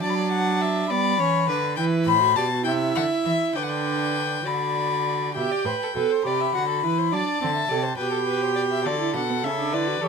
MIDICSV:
0, 0, Header, 1, 5, 480
1, 0, Start_track
1, 0, Key_signature, 1, "major"
1, 0, Tempo, 584226
1, 22, Time_signature, 6, 3, 24, 8
1, 2422, Tempo, 600601
1, 4822, Tempo, 580833
1, 8236, End_track
2, 0, Start_track
2, 0, Title_t, "Violin"
2, 0, Program_c, 0, 40
2, 12, Note_on_c, 0, 81, 59
2, 76, Note_on_c, 0, 83, 53
2, 89, Note_off_c, 0, 81, 0
2, 119, Note_on_c, 0, 81, 67
2, 131, Note_off_c, 0, 83, 0
2, 731, Note_off_c, 0, 81, 0
2, 735, Note_on_c, 0, 83, 64
2, 1440, Note_off_c, 0, 83, 0
2, 1448, Note_on_c, 0, 79, 76
2, 1513, Note_off_c, 0, 79, 0
2, 1683, Note_on_c, 0, 83, 86
2, 1933, Note_on_c, 0, 81, 77
2, 1945, Note_off_c, 0, 83, 0
2, 2164, Note_off_c, 0, 81, 0
2, 2169, Note_on_c, 0, 79, 76
2, 2235, Note_off_c, 0, 79, 0
2, 2427, Note_on_c, 0, 78, 76
2, 2490, Note_off_c, 0, 78, 0
2, 2664, Note_on_c, 0, 76, 72
2, 2896, Note_off_c, 0, 76, 0
2, 2900, Note_on_c, 0, 79, 60
2, 2964, Note_on_c, 0, 78, 53
2, 2976, Note_off_c, 0, 79, 0
2, 3013, Note_on_c, 0, 79, 68
2, 3025, Note_off_c, 0, 78, 0
2, 3632, Note_on_c, 0, 83, 62
2, 3644, Note_off_c, 0, 79, 0
2, 4336, Note_off_c, 0, 83, 0
2, 4341, Note_on_c, 0, 79, 62
2, 5030, Note_off_c, 0, 79, 0
2, 5072, Note_on_c, 0, 83, 62
2, 5796, Note_on_c, 0, 81, 69
2, 5809, Note_off_c, 0, 83, 0
2, 6493, Note_off_c, 0, 81, 0
2, 6498, Note_on_c, 0, 79, 67
2, 7224, Note_on_c, 0, 74, 81
2, 7237, Note_off_c, 0, 79, 0
2, 7463, Note_off_c, 0, 74, 0
2, 7473, Note_on_c, 0, 78, 76
2, 7704, Note_on_c, 0, 76, 75
2, 7716, Note_off_c, 0, 78, 0
2, 7948, Note_on_c, 0, 74, 76
2, 7960, Note_off_c, 0, 76, 0
2, 8194, Note_on_c, 0, 73, 71
2, 8207, Note_off_c, 0, 74, 0
2, 8236, Note_off_c, 0, 73, 0
2, 8236, End_track
3, 0, Start_track
3, 0, Title_t, "Violin"
3, 0, Program_c, 1, 40
3, 22, Note_on_c, 1, 74, 74
3, 257, Note_off_c, 1, 74, 0
3, 261, Note_on_c, 1, 78, 67
3, 502, Note_on_c, 1, 76, 73
3, 514, Note_off_c, 1, 78, 0
3, 740, Note_on_c, 1, 74, 82
3, 752, Note_off_c, 1, 76, 0
3, 979, Note_on_c, 1, 73, 76
3, 991, Note_off_c, 1, 74, 0
3, 1218, Note_off_c, 1, 73, 0
3, 1224, Note_on_c, 1, 71, 77
3, 1455, Note_off_c, 1, 71, 0
3, 1468, Note_on_c, 1, 71, 73
3, 1711, Note_on_c, 1, 72, 68
3, 1724, Note_off_c, 1, 71, 0
3, 1945, Note_off_c, 1, 72, 0
3, 1953, Note_on_c, 1, 74, 63
3, 2019, Note_off_c, 1, 74, 0
3, 2200, Note_on_c, 1, 76, 79
3, 2919, Note_on_c, 1, 71, 67
3, 2931, Note_off_c, 1, 76, 0
3, 3630, Note_on_c, 1, 74, 61
3, 3642, Note_off_c, 1, 71, 0
3, 4345, Note_off_c, 1, 74, 0
3, 4350, Note_on_c, 1, 76, 59
3, 4473, Note_on_c, 1, 74, 61
3, 4485, Note_off_c, 1, 76, 0
3, 4589, Note_off_c, 1, 74, 0
3, 4594, Note_on_c, 1, 72, 59
3, 4640, Note_off_c, 1, 72, 0
3, 4721, Note_on_c, 1, 69, 53
3, 4765, Note_off_c, 1, 69, 0
3, 4836, Note_on_c, 1, 71, 57
3, 4958, Note_on_c, 1, 72, 55
3, 4970, Note_off_c, 1, 71, 0
3, 5083, Note_on_c, 1, 74, 60
3, 5096, Note_off_c, 1, 72, 0
3, 5196, Note_on_c, 1, 76, 55
3, 5208, Note_off_c, 1, 74, 0
3, 5312, Note_off_c, 1, 76, 0
3, 5316, Note_on_c, 1, 78, 64
3, 5423, Note_off_c, 1, 78, 0
3, 5428, Note_on_c, 1, 69, 51
3, 5546, Note_off_c, 1, 69, 0
3, 5566, Note_on_c, 1, 71, 58
3, 5675, Note_on_c, 1, 72, 55
3, 5687, Note_off_c, 1, 71, 0
3, 5792, Note_off_c, 1, 72, 0
3, 5799, Note_on_c, 1, 74, 63
3, 6137, Note_off_c, 1, 74, 0
3, 6142, Note_on_c, 1, 76, 54
3, 6260, Note_on_c, 1, 74, 58
3, 6272, Note_off_c, 1, 76, 0
3, 6376, Note_on_c, 1, 72, 63
3, 6388, Note_off_c, 1, 74, 0
3, 6487, Note_off_c, 1, 72, 0
3, 6492, Note_on_c, 1, 71, 64
3, 6602, Note_off_c, 1, 71, 0
3, 6607, Note_on_c, 1, 69, 52
3, 6658, Note_off_c, 1, 69, 0
3, 6742, Note_on_c, 1, 71, 66
3, 6865, Note_on_c, 1, 72, 60
3, 6877, Note_off_c, 1, 71, 0
3, 6969, Note_off_c, 1, 72, 0
3, 6974, Note_on_c, 1, 74, 60
3, 7024, Note_off_c, 1, 74, 0
3, 7105, Note_on_c, 1, 76, 62
3, 7210, Note_off_c, 1, 76, 0
3, 7215, Note_on_c, 1, 69, 66
3, 7943, Note_on_c, 1, 71, 69
3, 7956, Note_off_c, 1, 69, 0
3, 8179, Note_on_c, 1, 69, 64
3, 8192, Note_off_c, 1, 71, 0
3, 8236, Note_off_c, 1, 69, 0
3, 8236, End_track
4, 0, Start_track
4, 0, Title_t, "Viola"
4, 0, Program_c, 2, 41
4, 23, Note_on_c, 2, 62, 66
4, 745, Note_on_c, 2, 59, 65
4, 757, Note_off_c, 2, 62, 0
4, 975, Note_off_c, 2, 59, 0
4, 980, Note_on_c, 2, 61, 65
4, 1213, Note_off_c, 2, 61, 0
4, 1224, Note_on_c, 2, 62, 68
4, 1290, Note_off_c, 2, 62, 0
4, 1459, Note_on_c, 2, 64, 72
4, 1811, Note_off_c, 2, 64, 0
4, 1816, Note_on_c, 2, 66, 62
4, 1935, Note_off_c, 2, 66, 0
4, 1942, Note_on_c, 2, 67, 67
4, 1990, Note_off_c, 2, 67, 0
4, 2060, Note_on_c, 2, 66, 68
4, 2171, Note_off_c, 2, 66, 0
4, 2176, Note_on_c, 2, 64, 69
4, 2907, Note_on_c, 2, 62, 71
4, 2919, Note_off_c, 2, 64, 0
4, 3626, Note_off_c, 2, 62, 0
4, 3631, Note_on_c, 2, 66, 64
4, 4335, Note_off_c, 2, 66, 0
4, 4344, Note_on_c, 2, 67, 77
4, 4588, Note_on_c, 2, 71, 70
4, 4600, Note_off_c, 2, 67, 0
4, 4825, Note_off_c, 2, 71, 0
4, 4830, Note_on_c, 2, 69, 76
4, 5065, Note_off_c, 2, 69, 0
4, 5076, Note_on_c, 2, 67, 75
4, 5314, Note_on_c, 2, 66, 66
4, 5326, Note_off_c, 2, 67, 0
4, 5552, Note_on_c, 2, 64, 71
4, 5565, Note_off_c, 2, 66, 0
4, 5792, Note_on_c, 2, 62, 78
4, 5804, Note_off_c, 2, 64, 0
4, 6025, Note_off_c, 2, 62, 0
4, 6030, Note_on_c, 2, 60, 69
4, 6096, Note_off_c, 2, 60, 0
4, 6266, Note_on_c, 2, 69, 75
4, 6332, Note_off_c, 2, 69, 0
4, 6506, Note_on_c, 2, 67, 79
4, 7227, Note_on_c, 2, 66, 70
4, 7239, Note_off_c, 2, 67, 0
4, 7345, Note_off_c, 2, 66, 0
4, 7350, Note_on_c, 2, 64, 58
4, 7464, Note_off_c, 2, 64, 0
4, 7470, Note_on_c, 2, 62, 58
4, 7516, Note_off_c, 2, 62, 0
4, 7587, Note_on_c, 2, 59, 59
4, 7634, Note_off_c, 2, 59, 0
4, 7718, Note_on_c, 2, 61, 63
4, 7763, Note_off_c, 2, 61, 0
4, 7833, Note_on_c, 2, 62, 63
4, 7948, Note_on_c, 2, 64, 64
4, 7961, Note_off_c, 2, 62, 0
4, 8063, Note_on_c, 2, 66, 65
4, 8075, Note_off_c, 2, 64, 0
4, 8182, Note_off_c, 2, 66, 0
4, 8187, Note_on_c, 2, 67, 60
4, 8236, Note_off_c, 2, 67, 0
4, 8236, End_track
5, 0, Start_track
5, 0, Title_t, "Cello"
5, 0, Program_c, 3, 42
5, 23, Note_on_c, 3, 54, 65
5, 729, Note_off_c, 3, 54, 0
5, 738, Note_on_c, 3, 55, 64
5, 968, Note_on_c, 3, 52, 60
5, 980, Note_off_c, 3, 55, 0
5, 1214, Note_on_c, 3, 50, 67
5, 1227, Note_off_c, 3, 52, 0
5, 1452, Note_on_c, 3, 52, 70
5, 1464, Note_off_c, 3, 50, 0
5, 1693, Note_on_c, 3, 45, 68
5, 1706, Note_off_c, 3, 52, 0
5, 1935, Note_on_c, 3, 47, 74
5, 1947, Note_off_c, 3, 45, 0
5, 2184, Note_on_c, 3, 48, 71
5, 2196, Note_off_c, 3, 47, 0
5, 2423, Note_off_c, 3, 48, 0
5, 2428, Note_on_c, 3, 50, 68
5, 2492, Note_off_c, 3, 50, 0
5, 2665, Note_on_c, 3, 52, 61
5, 2729, Note_off_c, 3, 52, 0
5, 2904, Note_on_c, 3, 50, 63
5, 3614, Note_off_c, 3, 50, 0
5, 3625, Note_on_c, 3, 50, 57
5, 4331, Note_off_c, 3, 50, 0
5, 4351, Note_on_c, 3, 47, 56
5, 4415, Note_off_c, 3, 47, 0
5, 4581, Note_on_c, 3, 45, 57
5, 4645, Note_off_c, 3, 45, 0
5, 4825, Note_on_c, 3, 47, 58
5, 4891, Note_off_c, 3, 47, 0
5, 5063, Note_on_c, 3, 48, 55
5, 5301, Note_off_c, 3, 48, 0
5, 5316, Note_on_c, 3, 50, 55
5, 5548, Note_on_c, 3, 52, 57
5, 5560, Note_off_c, 3, 50, 0
5, 5784, Note_off_c, 3, 52, 0
5, 5789, Note_on_c, 3, 54, 57
5, 5855, Note_off_c, 3, 54, 0
5, 6029, Note_on_c, 3, 50, 59
5, 6262, Note_off_c, 3, 50, 0
5, 6269, Note_on_c, 3, 48, 58
5, 6500, Note_off_c, 3, 48, 0
5, 6505, Note_on_c, 3, 47, 58
5, 7220, Note_on_c, 3, 50, 62
5, 7233, Note_off_c, 3, 47, 0
5, 7455, Note_on_c, 3, 47, 61
5, 7467, Note_off_c, 3, 50, 0
5, 7697, Note_on_c, 3, 49, 65
5, 7709, Note_off_c, 3, 47, 0
5, 7939, Note_on_c, 3, 50, 67
5, 7951, Note_off_c, 3, 49, 0
5, 8171, Note_off_c, 3, 50, 0
5, 8176, Note_on_c, 3, 52, 63
5, 8236, Note_off_c, 3, 52, 0
5, 8236, End_track
0, 0, End_of_file